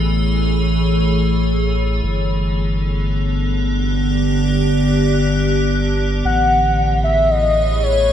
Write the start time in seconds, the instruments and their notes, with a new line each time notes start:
Already playing: analog synth bass A1, ambient pad E3 A3 G#4 C#5
2.04 analog synth bass G1, ambient pad D3
2.24 ambient pad B3
3.43 ambient pad G4 D5
6.25 analog synth bass A1, ambient pad E3, soft synth lead F#5
6.60 ambient pad C#5
6.65 ambient pad G#4
6.80 ambient pad A3
7.04 soft synth lead E5
7.30 soft synth lead D#5
7.83 soft synth lead C#5